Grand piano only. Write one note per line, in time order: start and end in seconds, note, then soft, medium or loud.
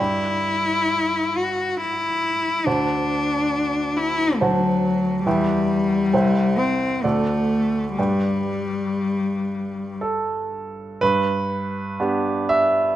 0.00 2.63 G2 soft
0.00 2.63 D5 soft
0.00 2.63 G5 soft
0.00 2.62 B5 soft
2.66 4.37 D2 soft
2.66 4.37 C5 soft
2.66 4.37 F#5 soft
2.66 4.37 A5 soft
4.41 5.23 D2 soft
4.41 5.23 C5 soft
4.41 5.23 F#5 soft
4.41 5.23 A5 soft
5.26 6.10 E2 soft
5.26 6.10 B4 soft
5.26 6.11 E5 soft
5.26 6.10 G5 soft
6.13 7.01 C2 soft
6.13 7.01 C5 soft
6.13 7.01 E5 soft
6.13 7.01 G5 soft
7.04 7.95 D2 soft
7.04 7.95 A4 soft
7.04 7.95 D5 soft
7.04 7.95 F#5 soft
7.98 10.98 G2 soft
7.98 10.98 B4 soft
7.98 10.98 D5 soft
7.98 10.98 G5 soft
10.01 11.01 A4 soft
11.01 11.97 G2 soft
11.01 12.50 B4 medium
12.00 12.93 B3 soft
12.00 12.93 D4 soft
12.00 12.93 G4 soft
12.49 12.96 E5 medium